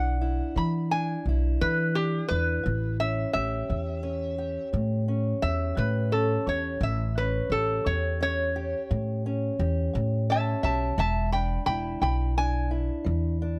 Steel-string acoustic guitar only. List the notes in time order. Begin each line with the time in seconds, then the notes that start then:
Already playing: E3 D4 E4
0.21 E4
0.56 E3
0.92 D4
1.29 E4
1.62 E3
1.96 D4
2.29 E4
2.63 A2
3.00 C#4
3.36 G4
3.69 A2
4.03 C#4
4.38 G4
4.73 A2
5.08 C#4
5.43 G4
5.75 A2
6.12 C#4
6.47 G4
6.81 A2
7.18 C#4
7.53 G4
7.87 A2
8.21 C#4
8.56 G4
8.90 A2
9.26 C#4
9.59 G4
9.93 A2
10.30 C#4
10.65 G4
10.98 E3
11.34 D4
11.70 E4
12.03 E3
12.38 D4
12.71 E4
13.04 E3
13.42 D4